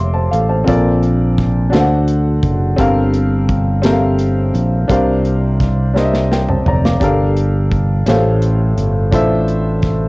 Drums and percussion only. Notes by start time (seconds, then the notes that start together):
0.33 closed hi-hat
0.68 kick, closed hi-hat
1.03 closed hi-hat
1.38 kick, snare, closed hi-hat
1.73 snare, closed hi-hat
2.08 closed hi-hat
2.43 kick, closed hi-hat
2.78 kick, closed hi-hat
3.14 closed hi-hat
3.49 kick, closed hi-hat
3.83 snare, closed hi-hat
4.19 closed hi-hat
4.55 closed hi-hat
4.89 kick, closed hi-hat
5.25 closed hi-hat
5.60 kick, snare, closed hi-hat
5.96 snare
6.14 snare
6.32 snare
6.49 mid tom
6.66 floor tom
6.85 snare
7.01 kick, closed hi-hat
7.37 closed hi-hat
7.72 kick, closed hi-hat
8.06 snare, closed hi-hat
8.42 closed hi-hat
8.78 closed hi-hat
9.12 kick, closed hi-hat
9.48 closed hi-hat
9.82 kick, snare, closed hi-hat